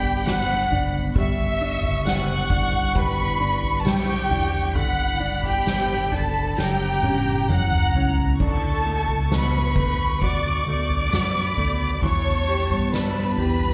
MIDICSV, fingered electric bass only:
0, 0, Header, 1, 2, 480
1, 0, Start_track
1, 0, Tempo, 898204
1, 619, Time_signature, 4, 2, 24, 8
1, 2538, Tempo, 907716
1, 7292, End_track
2, 0, Start_track
2, 0, Title_t, "Fingered electric bass"
2, 0, Program_c, 0, 33
2, 0, Note_on_c, 0, 31, 102
2, 359, Note_off_c, 0, 31, 0
2, 378, Note_on_c, 0, 30, 90
2, 601, Note_off_c, 0, 30, 0
2, 618, Note_on_c, 0, 31, 107
2, 956, Note_off_c, 0, 31, 0
2, 976, Note_on_c, 0, 30, 91
2, 1316, Note_off_c, 0, 30, 0
2, 1339, Note_on_c, 0, 31, 83
2, 1797, Note_off_c, 0, 31, 0
2, 1819, Note_on_c, 0, 31, 99
2, 2041, Note_off_c, 0, 31, 0
2, 2058, Note_on_c, 0, 35, 96
2, 2281, Note_off_c, 0, 35, 0
2, 2298, Note_on_c, 0, 28, 86
2, 2540, Note_off_c, 0, 28, 0
2, 2540, Note_on_c, 0, 30, 106
2, 2878, Note_off_c, 0, 30, 0
2, 2900, Note_on_c, 0, 31, 82
2, 3240, Note_off_c, 0, 31, 0
2, 3264, Note_on_c, 0, 30, 92
2, 3487, Note_off_c, 0, 30, 0
2, 3505, Note_on_c, 0, 30, 95
2, 3728, Note_off_c, 0, 30, 0
2, 3744, Note_on_c, 0, 30, 85
2, 4207, Note_off_c, 0, 30, 0
2, 4231, Note_on_c, 0, 37, 77
2, 4454, Note_off_c, 0, 37, 0
2, 4470, Note_on_c, 0, 38, 98
2, 4809, Note_off_c, 0, 38, 0
2, 4832, Note_on_c, 0, 37, 82
2, 5170, Note_off_c, 0, 37, 0
2, 5188, Note_on_c, 0, 38, 91
2, 5648, Note_off_c, 0, 38, 0
2, 5668, Note_on_c, 0, 38, 91
2, 5892, Note_off_c, 0, 38, 0
2, 5910, Note_on_c, 0, 42, 97
2, 6132, Note_off_c, 0, 42, 0
2, 6149, Note_on_c, 0, 38, 83
2, 6370, Note_off_c, 0, 38, 0
2, 6387, Note_on_c, 0, 40, 101
2, 6723, Note_off_c, 0, 40, 0
2, 6746, Note_on_c, 0, 43, 89
2, 7082, Note_off_c, 0, 43, 0
2, 7102, Note_on_c, 0, 40, 84
2, 7292, Note_off_c, 0, 40, 0
2, 7292, End_track
0, 0, End_of_file